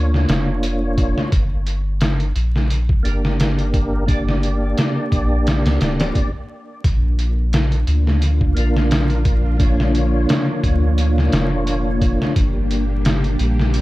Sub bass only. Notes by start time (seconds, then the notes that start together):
Already playing: D2
0.29 F1
1.32 G1
2.36 A#1
3.05 G1
5.12 A#1
5.65 C#2
5.81 D1
6.84 A#1
7.87 D2
8.56 A#1
10.63 D2
11.32 F1
12.36 G1
13.40 A#1